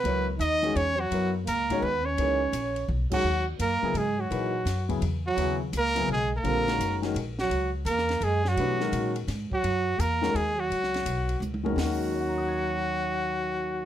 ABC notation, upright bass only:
X:1
M:3/4
L:1/8
Q:"Swing" 1/4=169
K:Ebphr
V:1 name="Upright bass" clef=bass
^C,,2 E,,2 F,,2 | ^F,,2 ^C,,2 E,,2 | ^C,,2 B,,,2 =B,,, z | E,,2 G,, z A,,2 |
B,,2 G,,2 F,,2 | E,,2 D,,2 C,,2 | B,,,2 G,,,2 B,,,2 | ^C,,2 F,,2 ^F,,2 |
=B,,2 _B,,2 A,, z | ^F,,2 _F,,2 E,,2 | ^C,,2 =B,,,2 C,,2 | E,,6- |
E,,6 |]